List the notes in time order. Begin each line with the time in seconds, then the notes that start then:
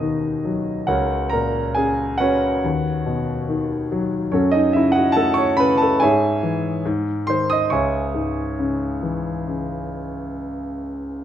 Already playing: D#2 B2 D#4 F#4 B4 D#5
0.01 D#3
0.45 F#3
0.87 C#2 F#4 A#4 C#5 F#5
1.30 A#2 A#4 A#5
1.75 C#3 G#4 G#5
2.18 C#4 F#4 B4 C#5 F#5
2.64 D#2
3.06 B2
3.49 D#3
3.92 F#3
4.32 F#2 C#4 F#4 A4 C#5
4.51 D#4 D#5
4.73 C#3 E4 E5
4.92 F#5
4.96 F#4
5.12 A5
5.17 A3 A4
5.34 C#5 C#6
5.57 C#3 B4 B5
5.77 A5
5.82 A4
6.00 G#2 G#4 C#5 E5 G#5
6.43 E3
6.85 G#2
7.27 D#3 C5 C6
7.50 D#5 D#6
7.70 C#2 C#5 E5 G#5 C#6
8.14 G#2
8.59 C#3
9.03 E3
9.48 C#3